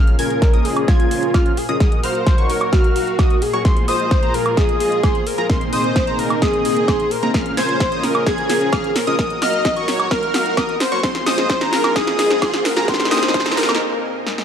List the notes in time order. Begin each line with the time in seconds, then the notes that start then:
Already playing: A#2 A#3 C#4 F4 G#4 A#4 C5 F5 F6
0.07 closed hi-hat
0.19 C#4 F4 G#4 A#4 G#5 G#6, open hi-hat
0.30 closed hi-hat
0.42 kick, snare, closed hi-hat
0.53 C#4 F4 G#4 A#4 D#5 D#6, closed hi-hat
0.65 G#4, open hi-hat
0.77 closed hi-hat, high woodblock
0.88 C#4 F4 G#4 A#4 G#5 G#6, kick, snare, closed hi-hat
1.00 closed hi-hat
1.11 F4, open hi-hat
1.23 closed hi-hat
1.34 C#4 F4 G#4 F6, kick, snare, closed hi-hat, high woodblock
1.46 closed hi-hat
1.57 G#4, open hi-hat
1.69 C#4 F4 G#4 A#4 D#5 D#6, closed hi-hat
1.80 A#2 D#4 F#4 A#4 D#6, kick, snare, closed hi-hat
1.92 closed hi-hat
2.03 F#4 A#4 C5 F5 F6, open hi-hat
2.15 closed hi-hat
2.27 kick, snare, closed hi-hat
2.38 F#4 A#4 C#5 C#6, closed hi-hat
2.50 A#4, open hi-hat
2.61 closed hi-hat, high woodblock
2.73 F#4 A#4 F5 F6, kick, snare, closed hi-hat
2.84 closed hi-hat
2.96 F#4, open hi-hat
3.07 closed hi-hat
3.19 A#4 D#5 D#6, kick, snare, closed hi-hat, high woodblock
3.30 closed hi-hat
3.42 G#4, open hi-hat
3.53 F#4 A#4 C#5 C#6, closed hi-hat
3.65 F4 G#4 C5 C6, kick, snare, closed hi-hat
3.77 closed hi-hat
3.88 F4 G#4 C5 D#5 D#6, open hi-hat
4.00 closed hi-hat
4.11 kick, snare, closed hi-hat
4.23 F4 G#4 A#4 A#5, closed hi-hat
4.34 A#4, open hi-hat
4.46 closed hi-hat, high woodblock
4.57 F4 G#4 D#5 D#6, kick, snare, closed hi-hat
4.69 closed hi-hat
4.80 G#4, open hi-hat
4.92 closed hi-hat
5.03 F4 C5 C6, kick, snare, closed hi-hat, high woodblock
5.15 closed hi-hat
5.26 A#4, open hi-hat
5.38 F4 G#4 A#4 A#5, closed hi-hat
5.50 A#3 C4 D#4 C5 C6, kick, snare, closed hi-hat
5.61 closed hi-hat
5.73 A#3 C4 D#4 G#4 C5 D#5 D#6, open hi-hat
5.84 closed hi-hat
5.96 kick, snare, closed hi-hat
6.07 A#3 C4 D#4 G#4 A#4 A#5, closed hi-hat
6.19 A#4, open hi-hat
6.30 closed hi-hat, high woodblock
6.42 A#3 G#4 D#6, kick, snare, closed hi-hat
6.53 closed hi-hat
6.65 G#4, open hi-hat
6.77 closed hi-hat
6.88 G#4 C6, kick, snare, closed hi-hat, high woodblock
7.00 closed hi-hat
7.11 A#4, open hi-hat
7.23 A#3 C4 D#4 G#4 A#4 A#5, closed hi-hat
7.34 C#4 F6, kick, snare, closed hi-hat, riser
7.46 closed hi-hat
7.57 C#4 F4 G#4 A#4 C5 G#5 G#6, snare, open hi-hat
7.69 closed hi-hat
7.80 kick, snare, closed hi-hat
7.92 C#4 F4 G#4 A#4 D#5 D#6, closed hi-hat
8.03 A#4, snare, open hi-hat
8.15 closed hi-hat, high woodblock
8.27 F4 G#4 A#4 G#5 G#6, kick, snare, closed hi-hat
8.38 closed hi-hat
8.50 G#4, snare, open hi-hat
8.61 closed hi-hat
8.73 F6, kick, snare, closed hi-hat, high woodblock
8.84 closed hi-hat
8.96 A#4, snare, open hi-hat
9.07 C#4 F4 G#4 A#4 D#5 D#6, closed hi-hat
9.19 D#4 F#4 A#4 D#6, kick, snare, closed hi-hat
9.30 closed hi-hat
9.42 F#4 A#4 D#5 F5 F6, snare, open hi-hat
9.53 closed hi-hat
9.65 kick, snare, closed hi-hat
9.77 F#4 A#4 C#5 C#6, closed hi-hat
9.88 C#5, snare, open hi-hat
10.00 closed hi-hat, high woodblock
10.11 F#4 A#4 F5 F6, kick, snare, closed hi-hat
10.23 closed hi-hat
10.34 A#4, snare, open hi-hat
10.46 closed hi-hat
10.57 F#4 A#4 D#5 D#6, kick, snare, closed hi-hat, high woodblock
10.69 closed hi-hat
10.80 C5, snare, open hi-hat
10.92 F#4 A#4 C#5 C#6, closed hi-hat
11.03 A#3 C4 F4 G#4 C6, kick, snare, closed hi-hat
11.15 snare, closed hi-hat
11.26 F4 G#4 C5 D#5 D#6, snare, open hi-hat
11.38 snare, closed hi-hat
11.50 kick, snare, closed hi-hat
11.61 F4 G#4 A#4 A#5, snare, closed hi-hat
11.73 A#4, snare, open hi-hat
11.84 snare, high woodblock
11.96 F4 G#4 D#5 D#6, kick, snare, closed hi-hat
12.07 snare, closed hi-hat
12.19 G#4, snare, open hi-hat
12.30 snare, closed hi-hat
12.42 F4 C5 C6, kick, snare, closed hi-hat, high woodblock
12.54 snare, closed hi-hat
12.65 A#4, snare, open hi-hat
12.77 F4 G#4 A#4 A#5, snare, closed hi-hat
12.88 A#2 A#3 C4 D#4 G#4 C6, kick, snare, closed hi-hat
12.94 snare
13.00 snare, closed hi-hat
13.05 snare
13.11 A#3 C4 D#4 G#4 C5 D#5 D#6, snare, open hi-hat
13.17 snare
13.23 snare, closed hi-hat
13.28 snare
13.34 kick, snare, closed hi-hat
13.40 snare
13.46 A#3 C4 D#4 G#4 A#4 A#5, snare, closed hi-hat
13.52 snare
13.57 A#4, snare, open hi-hat
13.63 snare
13.69 snare, closed hi-hat, high woodblock
13.75 snare
14.27 snare
14.38 snare